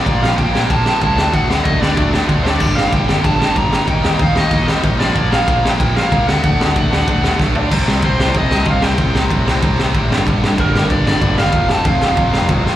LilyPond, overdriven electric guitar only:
\new Staff \with { instrumentName = "Overdriven electric guitar" } { \time 4/4 \key c \dorian \tempo 4 = 188 d''8 f''8 g''4 a''4 a''4 | fis''4 ees''8 d''4 r4 d''8~ | d''8 f''8 g''4 a''4 bes''4 | g''4 f''8 ees''4 r4 d''8~ |
d''8 f''4~ f''16 g''8. f''4 fis''8 | fis''2. r4 | r4 c''4 ees''4 f''8 g''8~ | g''8 r2. r8 |
r4 bes'4 d''8 d''4 f''8~ | f''8 a''8 f''2 r4 | }